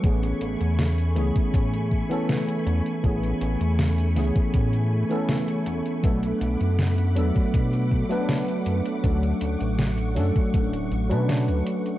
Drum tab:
HH |xxxxxxxxxx-xxxxx|xxxxxxxxxx-xxxxx|xxxxxxxxxx-xxxxx|xxxxxxxxxxxxxxxx|
SD |----o-------o---|----o-o-----o---|----o-------o---|----o-o-----o---|
BD |o------oo-o-----|o------oo-------|o------oo-o-----|o------oo-------|